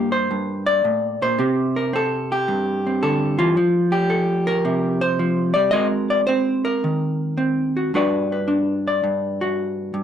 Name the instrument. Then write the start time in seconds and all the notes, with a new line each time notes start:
hollow-body jazz guitar
Already playing: G2 A#3 F4 G4 A#4
0.12 C5
0.31 G2
0.66 D5
0.85 A2
1.22 A#2 C5
1.39 C3 C4 G4
1.76 A#4
1.93 C4 A4
2.32 G4
2.48 G2
2.87 C4
3.03 D3 A4
3.39 E3 F4
3.57 F3
3.92 G4
4.10 A4
4.47 A#4
4.65 C3
5.01 C5
5.19 F3
5.54 G3 D5
5.71 G#3 C4 F#4 A#4 D#5
6.10 D5
6.27 C4 C5
6.65 A#4
6.84 D#3
7.38 C4
7.77 F#4
7.94 G2 D4 F#4 B4 D5
8.32 B4
8.48 D4
8.88 D5
9.04 G2
9.41 F#4
9.94 G2